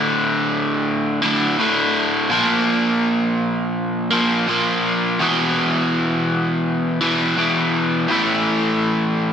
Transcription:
0, 0, Header, 1, 2, 480
1, 0, Start_track
1, 0, Tempo, 722022
1, 1541, Time_signature, 4, 2, 24, 8
1, 6202, End_track
2, 0, Start_track
2, 0, Title_t, "Overdriven electric guitar"
2, 0, Program_c, 0, 29
2, 0, Note_on_c, 0, 38, 75
2, 0, Note_on_c, 0, 45, 73
2, 0, Note_on_c, 0, 50, 83
2, 804, Note_off_c, 0, 50, 0
2, 805, Note_off_c, 0, 38, 0
2, 810, Note_off_c, 0, 45, 0
2, 812, Note_on_c, 0, 50, 83
2, 824, Note_on_c, 0, 45, 76
2, 831, Note_on_c, 0, 38, 62
2, 1042, Note_off_c, 0, 38, 0
2, 1042, Note_off_c, 0, 50, 0
2, 1048, Note_off_c, 0, 45, 0
2, 1050, Note_on_c, 0, 38, 53
2, 1061, Note_on_c, 0, 45, 64
2, 1070, Note_on_c, 0, 50, 72
2, 1522, Note_off_c, 0, 38, 0
2, 1527, Note_off_c, 0, 45, 0
2, 1527, Note_on_c, 0, 46, 74
2, 1532, Note_off_c, 0, 50, 0
2, 1539, Note_on_c, 0, 53, 80
2, 1552, Note_on_c, 0, 58, 81
2, 2721, Note_off_c, 0, 46, 0
2, 2722, Note_off_c, 0, 58, 0
2, 2727, Note_off_c, 0, 53, 0
2, 2730, Note_on_c, 0, 58, 70
2, 2744, Note_on_c, 0, 53, 65
2, 2753, Note_on_c, 0, 46, 62
2, 2962, Note_off_c, 0, 46, 0
2, 2962, Note_off_c, 0, 58, 0
2, 2969, Note_off_c, 0, 53, 0
2, 2970, Note_on_c, 0, 46, 58
2, 2982, Note_on_c, 0, 53, 61
2, 2993, Note_on_c, 0, 58, 65
2, 3442, Note_off_c, 0, 46, 0
2, 3448, Note_off_c, 0, 53, 0
2, 3452, Note_on_c, 0, 40, 79
2, 3453, Note_off_c, 0, 58, 0
2, 3465, Note_on_c, 0, 47, 89
2, 3473, Note_on_c, 0, 52, 82
2, 4642, Note_off_c, 0, 40, 0
2, 4649, Note_off_c, 0, 47, 0
2, 4653, Note_off_c, 0, 52, 0
2, 4660, Note_on_c, 0, 52, 79
2, 4667, Note_on_c, 0, 47, 69
2, 4676, Note_on_c, 0, 40, 58
2, 4886, Note_off_c, 0, 52, 0
2, 4888, Note_off_c, 0, 40, 0
2, 4890, Note_off_c, 0, 47, 0
2, 4896, Note_on_c, 0, 40, 59
2, 4907, Note_on_c, 0, 47, 58
2, 4916, Note_on_c, 0, 52, 61
2, 5363, Note_off_c, 0, 40, 0
2, 5369, Note_off_c, 0, 47, 0
2, 5374, Note_off_c, 0, 52, 0
2, 5374, Note_on_c, 0, 45, 76
2, 5390, Note_on_c, 0, 52, 84
2, 5399, Note_on_c, 0, 57, 86
2, 6202, Note_off_c, 0, 45, 0
2, 6202, Note_off_c, 0, 52, 0
2, 6202, Note_off_c, 0, 57, 0
2, 6202, End_track
0, 0, End_of_file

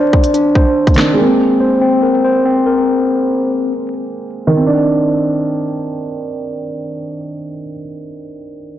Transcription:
0, 0, Header, 1, 4, 480
1, 0, Start_track
1, 0, Key_signature, -3, "minor"
1, 0, Tempo, 422535
1, 1348, Time_signature, 4, 2, 24, 8
1, 9984, End_track
2, 0, Start_track
2, 0, Title_t, "Tine electric piano"
2, 0, Program_c, 0, 4
2, 0, Note_on_c, 0, 62, 86
2, 0, Note_on_c, 0, 72, 84
2, 0, Note_on_c, 0, 74, 85
2, 375, Note_off_c, 0, 62, 0
2, 388, Note_on_c, 0, 62, 90
2, 623, Note_off_c, 0, 72, 0
2, 637, Note_on_c, 0, 72, 86
2, 869, Note_off_c, 0, 74, 0
2, 1103, Note_off_c, 0, 62, 0
2, 1116, Note_on_c, 0, 62, 95
2, 1349, Note_on_c, 0, 60, 95
2, 1353, Note_off_c, 0, 62, 0
2, 1353, Note_off_c, 0, 72, 0
2, 1825, Note_on_c, 0, 72, 84
2, 2048, Note_off_c, 0, 60, 0
2, 2062, Note_on_c, 0, 60, 97
2, 2300, Note_on_c, 0, 70, 77
2, 2538, Note_off_c, 0, 72, 0
2, 2552, Note_on_c, 0, 72, 80
2, 2775, Note_off_c, 0, 60, 0
2, 2789, Note_on_c, 0, 60, 90
2, 3013, Note_off_c, 0, 70, 0
2, 3026, Note_on_c, 0, 70, 78
2, 3990, Note_off_c, 0, 72, 0
2, 4229, Note_off_c, 0, 60, 0
2, 4468, Note_off_c, 0, 70, 0
2, 9984, End_track
3, 0, Start_track
3, 0, Title_t, "Grand piano"
3, 0, Program_c, 1, 0
3, 0, Control_c, 1, 64, 127
3, 0, Note_on_c, 1, 51, 75
3, 0, Note_on_c, 1, 60, 66
3, 0, Note_on_c, 1, 62, 88
3, 1037, Note_off_c, 1, 51, 0
3, 1064, Note_off_c, 1, 60, 0
3, 1082, Note_on_c, 1, 51, 61
3, 1092, Note_off_c, 1, 62, 0
3, 1110, Note_on_c, 1, 60, 52
3, 1137, Note_on_c, 1, 62, 66
3, 1295, Note_on_c, 1, 56, 77
3, 1335, Note_off_c, 1, 51, 0
3, 1349, Note_off_c, 1, 60, 0
3, 1350, Note_on_c, 1, 58, 74
3, 1361, Control_c, 1, 64, 0
3, 1363, Note_off_c, 1, 62, 0
3, 1405, Note_on_c, 1, 60, 87
3, 1559, Control_c, 1, 64, 127
3, 5080, Note_on_c, 1, 51, 81
3, 5116, Note_off_c, 1, 56, 0
3, 5144, Note_off_c, 1, 58, 0
3, 5171, Note_off_c, 1, 60, 0
3, 5189, Note_on_c, 1, 60, 78
3, 5205, Control_c, 1, 64, 0
3, 5299, Note_on_c, 1, 62, 90
3, 5373, Control_c, 1, 64, 127
3, 8640, Note_off_c, 1, 51, 0
3, 8750, Note_off_c, 1, 60, 0
3, 8859, Note_off_c, 1, 62, 0
3, 9984, End_track
4, 0, Start_track
4, 0, Title_t, "Drums"
4, 150, Note_on_c, 9, 36, 95
4, 263, Note_off_c, 9, 36, 0
4, 269, Note_on_c, 9, 42, 93
4, 382, Note_off_c, 9, 42, 0
4, 389, Note_on_c, 9, 42, 88
4, 502, Note_off_c, 9, 42, 0
4, 629, Note_on_c, 9, 36, 87
4, 742, Note_off_c, 9, 36, 0
4, 989, Note_on_c, 9, 36, 98
4, 989, Note_on_c, 9, 42, 60
4, 1069, Note_off_c, 9, 42, 0
4, 1069, Note_on_c, 9, 42, 57
4, 1102, Note_off_c, 9, 36, 0
4, 1108, Note_on_c, 9, 39, 86
4, 1110, Note_on_c, 9, 38, 103
4, 1150, Note_off_c, 9, 42, 0
4, 1150, Note_on_c, 9, 42, 59
4, 1222, Note_off_c, 9, 39, 0
4, 1224, Note_off_c, 9, 38, 0
4, 1263, Note_off_c, 9, 42, 0
4, 9984, End_track
0, 0, End_of_file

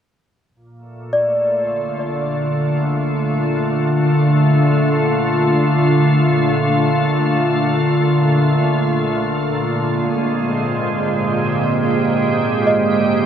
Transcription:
0, 0, Header, 1, 4, 480
1, 0, Start_track
1, 0, Key_signature, -2, "major"
1, 0, Tempo, 500000
1, 12729, End_track
2, 0, Start_track
2, 0, Title_t, "Celesta"
2, 0, Program_c, 0, 8
2, 706, Control_c, 0, 64, 127
2, 1084, Note_on_c, 0, 74, 48
2, 4754, Note_off_c, 0, 74, 0
2, 9397, Control_c, 0, 64, 0
2, 9588, Control_c, 0, 64, 127
2, 12162, Note_on_c, 0, 75, 58
2, 12729, Note_off_c, 0, 75, 0
2, 12729, End_track
3, 0, Start_track
3, 0, Title_t, "Ambient pad"
3, 0, Program_c, 1, 92
3, 527, Note_on_c, 1, 46, 90
3, 746, Note_on_c, 1, 57, 93
3, 1167, Note_on_c, 1, 65, 63
3, 1514, Note_on_c, 1, 50, 75
3, 9386, Note_off_c, 1, 57, 0
3, 9433, Note_on_c, 1, 56, 75
3, 9662, Note_on_c, 1, 60, 58
3, 10463, Note_on_c, 1, 67, 66
3, 12729, Note_off_c, 1, 46, 0
3, 12729, Note_off_c, 1, 50, 0
3, 12729, Note_off_c, 1, 56, 0
3, 12729, Note_off_c, 1, 60, 0
3, 12729, Note_off_c, 1, 65, 0
3, 12729, Note_off_c, 1, 67, 0
3, 12729, End_track
4, 0, Start_track
4, 0, Title_t, "Double bass section"
4, 0, Program_c, 2, 48
4, 522, Note_on_c, 2, 34, 65
4, 9329, Note_off_c, 2, 34, 0
4, 9381, Note_on_c, 2, 32, 67
4, 12729, Note_off_c, 2, 32, 0
4, 12729, End_track
0, 0, End_of_file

